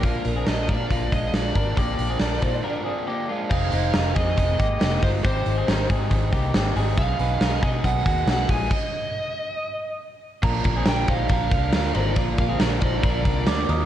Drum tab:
CC |--------|--------|x-------|--------|
RD |--------|--------|--------|--------|
HH |xxxxxxxx|xxxx----|-xxxxxxo|xxxxxxxo|
SD |--o---o-|--o-----|--o---o-|--o---o-|
BD |o--ooo-o|o--o----|o--ooo-o|o--ooo--|

CC |--------|x-------|x-------|--------|
RD |--------|--------|-xxxxxxx|xxxxxxxx|
HH |xxxxxxxo|--------|--------|--------|
SD |--o---o-|--------|--o---o-|--o---o-|
BD |o--ooo-o|o-------|oo-ooo--|oo-ooo--|